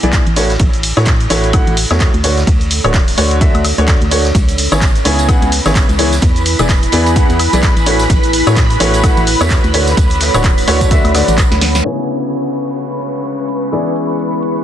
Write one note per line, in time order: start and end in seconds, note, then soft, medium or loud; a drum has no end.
0.00 0.21 B1 medium
0.00 0.21 E3 medium
0.00 0.21 B3 medium
0.00 3.10 E4 medium
0.00 0.21 E4 medium
0.00 0.21 G#4 medium
0.00 1.05 B4 medium
0.00 0.21 D5 loud
0.00 1.12 G#5 medium
0.00 closed hi-hat soft
0.00 shaker soft
0.13 kick loud
0.13 snare loud
0.13 clap loud
0.13 closed hi-hat medium
0.13 ride medium
0.13 shaker soft
0.27 0.57 A1 loud
0.27 closed hi-hat soft
0.36 0.50 A2 medium
0.36 0.50 A3 medium
0.36 0.50 E4 medium
0.36 0.50 F#4 medium
0.36 0.50 C#5 medium
0.36 open hi-hat loud
0.36 ride medium
0.36 shaker medium
0.50 snare soft
0.50 closed hi-hat soft
0.50 shaker soft
0.59 0.93 A1 loud
0.59 kick loud
0.59 closed hi-hat medium
0.59 ride medium
0.59 shaker soft
0.67 4.35 A4 medium
0.73 closed hi-hat soft
0.73 shaker soft
0.83 open hi-hat loud
0.83 ride medium
0.83 shaker medium
0.97 1.07 A2 loud
0.97 1.27 A2 medium
0.97 1.07 A3 medium
0.97 1.07 E4 medium
0.97 1.07 F#4 medium
0.97 1.07 C#5 loud
0.97 snare soft
0.97 closed hi-hat soft
0.97 high woodblock medium
0.97 shaker soft
1.06 kick loud
1.06 snare loud
1.06 clap loud
1.06 closed hi-hat medium
1.06 ride medium
1.06 shaker soft
1.20 6.22 C#5 medium
1.20 5.11 F#5 medium
1.20 closed hi-hat soft
1.20 shaker soft
1.30 1.63 A1 medium
1.30 1.50 A2 loud
1.30 1.50 A3 medium
1.30 1.50 E4 medium
1.30 1.50 F#4 medium
1.30 1.50 C#5 loud
1.30 open hi-hat loud
1.30 ride medium
1.30 shaker medium
1.44 closed hi-hat soft
1.44 shaker soft
1.53 1.73 A2 medium
1.53 1.73 A3 medium
1.53 1.73 E4 medium
1.53 1.73 F#4 medium
1.53 1.73 F#5 loud
1.53 kick loud
1.53 closed hi-hat medium
1.53 ride medium
1.53 high woodblock medium
1.53 shaker soft
1.67 1.85 A1 medium
1.67 closed hi-hat soft
1.77 open hi-hat loud
1.77 ride medium
1.77 shaker medium
1.91 2.09 E2 medium
1.91 2.09 A2 medium
1.91 2.09 A3 medium
1.91 2.09 E4 medium
1.91 2.09 F#4 medium
1.91 2.09 C#5 medium
1.91 snare medium
1.91 high woodblock medium
1.91 shaker soft
2.00 kick loud
2.00 snare loud
2.00 clap loud
2.00 closed hi-hat medium
2.00 ride loud
2.00 shaker soft
2.14 2.44 D2 loud
2.14 closed hi-hat soft
2.24 2.38 D3 medium
2.24 2.38 A3 medium
2.24 4.35 D4 medium
2.24 2.38 D4 medium
2.24 2.38 F#4 medium
2.24 2.38 C#5 medium
2.24 open hi-hat loud
2.24 ride medium
2.24 shaker medium
2.38 snare soft
2.38 closed hi-hat soft
2.38 shaker soft
2.47 2.80 D2 loud
2.47 kick loud
2.47 closed hi-hat medium
2.47 ride medium
2.47 shaker soft
2.61 closed hi-hat soft
2.61 shaker soft
2.71 open hi-hat loud
2.71 ride medium
2.71 shaker medium
2.84 3.15 D1 medium
2.84 2.94 D3 loud
2.84 2.94 A3 medium
2.84 2.94 D4 medium
2.84 2.94 F#4 medium
2.84 2.94 C#5 loud
2.84 closed hi-hat soft
2.84 ride soft
2.84 high woodblock medium
2.84 shaker soft
2.93 kick loud
2.93 snare loud
2.93 clap loud
2.93 closed hi-hat medium
2.93 ride medium
2.93 shaker soft
3.08 open hi-hat medium
3.08 shaker soft
3.18 3.51 D2 medium
3.18 3.37 D3 loud
3.18 3.37 A3 medium
3.18 3.37 D4 medium
3.18 3.37 F#4 medium
3.18 3.37 C#5 loud
3.18 open hi-hat loud
3.18 ride medium
3.18 shaker medium
3.31 closed hi-hat soft
3.31 ride soft
3.31 shaker soft
3.41 3.61 D3 medium
3.41 3.61 A3 medium
3.41 3.61 D4 medium
3.41 3.61 F#4 medium
3.41 3.61 E5 medium
3.41 kick loud
3.41 closed hi-hat medium
3.41 ride medium
3.41 shaker soft
3.55 3.73 D2 medium
3.55 closed hi-hat soft
3.55 high woodblock medium
3.55 shaker soft
3.64 open hi-hat loud
3.64 ride medium
3.64 high woodblock medium
3.64 shaker medium
3.78 3.96 D2 medium
3.78 3.96 D3 medium
3.78 3.96 A3 medium
3.78 3.96 D4 medium
3.78 3.96 F#4 medium
3.78 3.96 C#5 medium
3.78 closed hi-hat soft
3.78 shaker soft
3.88 kick loud
3.88 snare loud
3.88 clap loud
3.88 closed hi-hat medium
3.88 ride medium
3.88 shaker soft
4.02 4.32 D2 medium
4.02 closed hi-hat soft
4.11 4.25 A3 medium
4.11 4.25 D4 medium
4.11 4.25 F#4 medium
4.11 4.25 C#5 medium
4.11 open hi-hat loud
4.11 ride medium
4.11 shaker medium
4.25 snare soft
4.25 closed hi-hat soft
4.25 shaker soft
4.35 4.68 C#2 loud
4.35 10.60 E4 medium
4.35 11.84 B4 medium
4.35 11.86 B5 medium
4.35 kick loud
4.35 closed hi-hat medium
4.35 ride medium
4.35 tambourine medium
4.35 shaker soft
4.47 8.62 B4 medium
4.47 closed hi-hat soft
4.47 tambourine soft
4.47 shaker soft
4.58 open hi-hat loud
4.58 ride medium
4.58 shaker medium
4.72 5.02 G#1 medium
4.72 4.82 C#3 medium
4.72 4.82 B3 medium
4.72 4.82 E4 medium
4.72 4.82 G#4 medium
4.72 4.82 C#5 loud
4.72 snare soft
4.72 tambourine medium
4.72 high woodblock medium
4.72 shaker soft
4.82 kick loud
4.82 snare loud
4.82 clap loud
4.82 closed hi-hat medium
4.82 ride medium
4.82 tambourine medium
4.82 shaker soft
4.95 closed hi-hat soft
4.95 tambourine soft
4.95 shaker soft
5.01 8.62 G#5 medium
5.05 5.38 C#2 medium
5.05 5.25 C#3 medium
5.05 5.25 B3 medium
5.05 5.25 E4 medium
5.05 5.25 G#4 medium
5.05 5.25 C#5 loud
5.05 open hi-hat loud
5.05 ride medium
5.05 shaker medium
5.19 closed hi-hat soft
5.19 tambourine medium
5.19 shaker soft
5.29 5.48 C#3 medium
5.29 5.48 B3 medium
5.29 5.48 E4 medium
5.29 5.48 G#4 medium
5.29 5.48 F#5 loud
5.29 kick loud
5.29 closed hi-hat medium
5.29 ride medium
5.29 tambourine medium
5.29 high woodblock medium
5.29 shaker soft
5.42 5.60 C#2 loud
5.42 closed hi-hat soft
5.42 tambourine soft
5.52 open hi-hat loud
5.52 ride medium
5.52 shaker medium
5.66 5.84 G#1 medium
5.66 5.84 C#3 medium
5.66 5.84 B3 medium
5.66 5.84 E4 medium
5.66 5.84 G#4 medium
5.66 5.84 C#5 loud
5.66 snare medium
5.66 closed hi-hat soft
5.66 tambourine medium
5.66 high woodblock medium
5.66 shaker soft
5.75 kick loud
5.75 snare loud
5.75 clap loud
5.75 closed hi-hat medium
5.75 ride medium
5.75 tambourine medium
5.75 shaker soft
5.89 6.19 C#2 loud
5.89 closed hi-hat soft
5.89 tambourine soft
5.99 6.13 E3 medium
5.99 6.13 B3 medium
5.99 6.13 E4 medium
5.99 6.13 G#4 medium
5.99 6.13 C#5 medium
5.99 open hi-hat loud
5.99 ride medium
5.99 shaker medium
6.13 snare soft
6.13 closed hi-hat soft
6.13 tambourine medium
6.13 shaker soft
6.22 6.55 E2 loud
6.22 kick loud
6.22 closed hi-hat medium
6.22 ride medium
6.22 tambourine medium
6.22 shaker soft
6.36 closed hi-hat soft
6.36 tambourine soft
6.36 shaker soft
6.46 open hi-hat loud
6.46 ride medium
6.46 shaker medium
6.59 6.90 E1 loud
6.59 6.69 E3 loud
6.59 6.69 B3 medium
6.59 6.69 E4 medium
6.59 6.69 G#4 medium
6.59 6.69 D5 loud
6.59 closed hi-hat soft
6.59 ride soft
6.59 tambourine medium
6.59 high woodblock medium
6.59 shaker soft
6.69 kick loud
6.69 snare loud
6.69 clap loud
6.69 closed hi-hat medium
6.69 ride medium
6.69 tambourine medium
6.69 shaker soft
6.83 closed hi-hat soft
6.83 tambourine soft
6.83 shaker soft
6.92 7.26 E2 medium
6.92 7.12 E3 loud
6.92 7.12 B3 medium
6.92 7.12 E4 medium
6.92 7.12 G#4 medium
6.92 7.12 D5 loud
6.92 open hi-hat loud
6.92 ride medium
6.92 shaker medium
7.06 closed hi-hat soft
7.06 ride soft
7.06 tambourine medium
7.06 shaker soft
7.16 7.36 B3 medium
7.16 7.36 E4 medium
7.16 7.36 G#4 medium
7.16 7.36 F#5 loud
7.16 kick loud
7.16 closed hi-hat medium
7.16 ride medium
7.16 tambourine medium
7.16 shaker soft
7.30 7.48 E2 loud
7.30 closed hi-hat soft
7.30 tambourine soft
7.39 open hi-hat loud
7.39 ride medium
7.39 high woodblock medium
7.39 shaker medium
7.53 7.71 B1 medium
7.53 7.71 E3 medium
7.53 7.71 B3 medium
7.53 7.71 E4 medium
7.53 7.71 G#4 medium
7.53 7.71 D5 medium
7.53 closed hi-hat soft
7.53 tambourine medium
7.53 shaker soft
7.63 kick loud
7.63 snare loud
7.63 clap loud
7.63 closed hi-hat medium
7.63 ride medium
7.63 shaker soft
7.76 8.07 A1 loud
7.76 closed hi-hat soft
7.76 tambourine soft
7.86 8.00 A2 medium
7.86 8.00 A3 medium
7.86 8.00 E4 medium
7.86 8.00 F#4 medium
7.86 8.00 C#5 medium
7.86 open hi-hat loud
7.86 ride medium
7.86 shaker medium
7.93 11.85 A4 medium
7.99 12.61 C#5 medium
7.99 snare soft
7.99 closed hi-hat soft
7.99 tambourine medium
7.99 shaker soft
8.10 8.43 A1 loud
8.10 kick loud
8.10 closed hi-hat medium
8.10 ride medium
8.10 tambourine medium
8.10 shaker soft
8.23 closed hi-hat soft
8.23 tambourine soft
8.23 shaker soft
8.33 open hi-hat loud
8.33 ride medium
8.33 shaker medium
8.47 8.77 A2 medium
8.47 8.57 A2 medium
8.47 8.57 A3 medium
8.47 8.57 E4 medium
8.47 8.57 F#4 medium
8.47 8.57 C#5 loud
8.47 snare soft
8.47 closed hi-hat soft
8.47 tambourine medium
8.47 high woodblock medium
8.47 shaker soft
8.56 kick loud
8.56 snare loud
8.56 clap loud
8.56 closed hi-hat medium
8.56 ride medium
8.56 tambourine medium
8.56 shaker soft
8.70 12.61 F#5 medium
8.70 closed hi-hat soft
8.70 tambourine soft
8.70 shaker soft
8.80 9.13 A1 medium
8.80 9.00 A2 loud
8.80 9.00 A3 medium
8.80 9.00 E4 medium
8.80 9.00 F#4 medium
8.80 9.00 C#5 loud
8.80 open hi-hat loud
8.80 ride medium
8.80 shaker medium
8.94 closed hi-hat soft
8.94 tambourine medium
8.94 shaker soft
9.03 9.23 A2 medium
9.03 9.23 E4 medium
9.03 9.23 F#4 medium
9.03 9.23 F#5 loud
9.03 kick loud
9.03 closed hi-hat medium
9.03 ride medium
9.03 tambourine medium
9.03 high woodblock medium
9.03 shaker soft
9.17 9.35 A1 medium
9.17 closed hi-hat soft
9.17 tambourine soft
9.27 open hi-hat loud
9.27 ride medium
9.27 shaker medium
9.40 9.59 E2 medium
9.40 9.59 A2 medium
9.40 9.59 A3 medium
9.40 9.59 E4 medium
9.40 9.59 F#4 medium
9.40 9.59 C#5 loud
9.40 snare medium
9.40 tambourine medium
9.40 high woodblock medium
9.40 shaker soft
9.50 kick loud
9.50 snare loud
9.50 clap loud
9.50 closed hi-hat medium
9.50 ride medium
9.50 tambourine medium
9.50 shaker soft
9.64 9.94 D2 loud
9.64 closed hi-hat soft
9.64 tambourine soft
9.74 9.88 D3 medium
9.74 9.88 A3 medium
9.74 9.88 D4 medium
9.74 11.85 D4 medium
9.74 9.88 F#4 medium
9.74 9.88 C#5 medium
9.74 open hi-hat loud
9.74 ride medium
9.74 shaker medium
9.87 snare soft
9.87 closed hi-hat soft
9.87 tambourine medium
9.87 shaker soft
9.97 10.30 D2 loud
9.97 kick loud
9.97 closed hi-hat medium
9.97 ride medium
9.97 tambourine medium
9.97 shaker soft
10.10 closed hi-hat soft
10.10 tambourine soft
10.10 shaker soft
10.20 snare loud
10.20 open hi-hat loud
10.20 ride medium
10.20 shaker medium
10.34 10.65 D1 medium
10.34 10.44 D3 medium
10.34 10.44 A3 medium
10.34 10.44 D4 medium
10.34 10.44 F#4 medium
10.34 10.44 C#5 loud
10.34 closed hi-hat soft
10.34 tambourine medium
10.34 high woodblock medium
10.34 shaker soft
10.44 kick loud
10.44 clap loud
10.44 closed hi-hat medium
10.44 ride medium
10.44 tambourine medium
10.44 shaker soft
10.58 open hi-hat medium
10.58 tambourine soft
10.58 shaker soft
10.67 11.01 D2 medium
10.67 10.87 D3 loud
10.67 10.87 A3 medium
10.67 10.87 D4 medium
10.67 10.87 F#4 medium
10.67 10.87 C#5 loud
10.67 snare loud
10.67 open hi-hat loud
10.67 ride medium
10.67 shaker medium
10.81 kick medium
10.81 closed hi-hat soft
10.81 tambourine medium
10.81 shaker soft
10.91 11.11 D3 medium
10.91 11.11 A3 medium
10.91 11.11 D4 medium
10.91 11.11 F#4 medium
10.91 11.11 E5 loud
10.91 kick loud
10.91 closed hi-hat medium
10.91 ride medium
10.91 tambourine medium
10.91 shaker soft
11.05 11.23 D2 loud
11.05 closed hi-hat soft
11.05 tambourine soft
11.05 high woodblock medium
11.05 shaker soft
11.15 11.34 D3 medium
11.15 11.34 A3 medium
11.15 11.34 D4 medium
11.15 11.34 F#4 medium
11.15 11.34 D5 medium
11.15 snare loud
11.15 open hi-hat loud
11.15 ride medium
11.15 high woodblock medium
11.15 shaker medium
11.28 11.46 A1 medium
11.28 closed hi-hat soft
11.28 tambourine medium
11.28 shaker soft
11.38 kick loud
11.38 clap loud
11.38 closed hi-hat medium
11.38 ride medium
11.38 tambourine medium
11.38 shaker soft
11.52 11.82 D2 loud
11.52 snare medium
11.52 closed hi-hat soft
11.52 tambourine soft
11.52 shaker soft
11.61 snare medium
11.61 open hi-hat loud
11.61 ride medium
11.61 shaker medium
11.75 snare medium
11.75 snare soft
11.75 tambourine medium
11.75 shaker soft
11.85 13.70 C#3 medium
11.85 13.70 B3 medium
11.85 13.72 C#4 medium
11.85 13.70 E4 medium
11.85 13.70 G#4 medium
11.85 14.64 B4 medium
11.85 13.70 C#5 medium
11.85 14.64 C#6 medium
11.85 downlifter medium
12.08 closed hi-hat medium
12.08 shaker medium
12.22 14.64 G#4 medium
12.22 closed hi-hat soft
12.22 shaker soft
12.32 closed hi-hat medium
12.32 shaker soft
12.45 closed hi-hat soft
12.45 shaker soft
12.55 14.64 B4 medium
12.55 closed hi-hat medium
12.55 shaker medium
12.69 14.64 E5 medium
12.69 closed hi-hat soft
12.69 shaker soft
12.79 closed hi-hat medium
12.79 shaker soft
12.92 closed hi-hat soft
13.02 closed hi-hat medium
13.02 shaker medium
13.16 closed hi-hat soft
13.16 shaker soft
13.26 closed hi-hat medium
13.26 shaker soft
13.39 closed hi-hat soft
13.49 closed hi-hat medium
13.49 shaker medium
13.63 closed hi-hat soft
13.63 shaker soft
13.72 14.64 E3 medium
13.72 14.64 B3 medium
13.72 14.64 D4 medium
13.72 14.64 E4 medium
13.72 14.64 G#4 medium
13.72 14.64 D5 medium
13.72 closed hi-hat medium
13.72 shaker soft
13.86 closed hi-hat soft
13.86 shaker soft
13.96 closed hi-hat medium
13.96 shaker medium
14.10 closed hi-hat soft
14.10 shaker soft
14.19 closed hi-hat medium
14.19 shaker soft
14.33 closed hi-hat soft
14.33 shaker soft
14.43 closed hi-hat medium
14.43 shaker medium
14.56 closed hi-hat soft
14.56 shaker soft